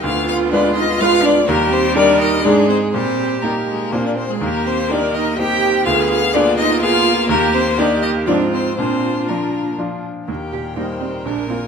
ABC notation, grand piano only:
X:1
M:3/4
L:1/8
Q:1/4=124
K:Eb
V:1 name="Grand piano"
D,,2 [A,F=B]2 [A,FB]2 | E,,2 [G,EB]2 [A,,A,EA]2 | B,,2 [B,EG]2 [B,,B,DF]2 | E,,2 [B,EG]2 [B,EG]2 |
D,,2 [=B,FA]2 [B,FA]2 | E,,2 [B,EG]2 [A,,F,CF]2 | B,,2 [F,DF]2 [F,DF]2 | E,, B,, [G,B,E] G, B,,, [B,F] |]